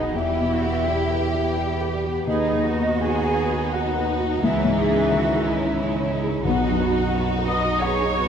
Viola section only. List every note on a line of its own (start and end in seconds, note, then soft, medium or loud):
0.00 0.13 D#4 medium
0.14 1.92 E4 medium
2.28 2.99 D#4 medium
3.03 3.74 G#4 medium
3.74 4.42 F#4 medium
4.43 6.08 E3 medium
6.44 7.43 F#4 medium
7.48 7.82 D#5 medium
7.82 8.28 C#5 medium